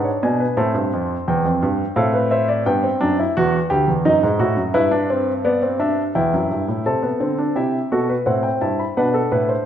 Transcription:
Already playing: D4
0.04 C#5
0.23 B2 D5 G#5
0.40 B4
0.57 A2 C4 C5 A5
0.74 G2
0.93 F2
1.28 E2 G5
1.45 F2
1.62 G2
1.96 A2 C4 A4 F5
2.14 B4
2.31 C5 E5
2.48 D5
2.66 G2 B3 G5
2.83 C4
3.01 F#2 D4
3.19 E4
3.37 E2 F#4
3.70 D2 G4
3.88 E2
4.05 F#2 D#4 D#5
4.23 G#2
4.39 A2 F#4
4.57 F#2
4.74 G2 E4 B4
4.91 D4
5.10 C4
5.45 B3 D5
5.62 C4
5.80 D4 E5
6.15 E2 E4 G5
6.33 F#2
6.51 G2
6.68 A2
6.86 C3 C4 A4 A5
7.03 B3
7.20 D3 C4
7.38 D4
7.56 C3 E4 G4 E5
7.92 B2 F#4 A4
8.09 B4
8.26 A2 C4 C5 F#5
8.43 G5
8.61 G2 E4 A5
8.79 B5
8.97 B2 D4 B4 F#5
9.14 A4
9.32 A2 B4
9.49 C5

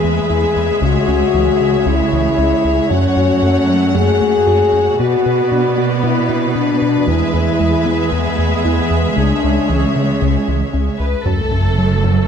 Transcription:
Already playing: E2 G#3 G#4 B4 E5
0.04 E2 G#3
0.30 E2 E4
0.56 E2
0.81 C#2 C#3 F#4 C#5
1.08 C#2 C#4
1.34 C#2 E3
1.60 C#3 G#3
1.86 C#2 C#3 E4
2.13 C#2 E3
2.38 C#2 C#4
2.65 C#2
2.91 F#2 F#3 A3 C#4 F#4 F#5
3.17 F#2 F#4
3.42 F#2 A3
3.68 F#3 C#4
3.95 F#2 F#3 G#4
4.21 F#2 A3
4.47 F#2 F#4
4.73 F#2
5.00 B2 B3 F#4 B4 D5
5.25 B2 B4
5.52 B2 D4
5.78 B3 F#4
6.03 B2 B3 E4
6.30 B2 D4
6.55 B2 D4 B4
6.82 B2
7.07 E2 E3 G#3 E4 G#4 E5
7.34 E2 E4
7.60 E2 G#3
7.86 E3 B3
8.12 E2 E3 B3
8.38 E2 G#3
8.65 E2 E4
8.91 E2
9.17 C#2 C#3 D4 C#5
9.43 C#2 C#4
9.69 C#2 E3 C#4
9.96 C#3 G#3
10.21 C#2 C#3
10.47 C#2 E3
10.73 C#2 C#4
10.99 C#2 B4
11.25 F#1 F#2 F#3 A3 A4, sub drop
11.52 F#2 A3
11.78 F#3
12.04 F#2 F#3

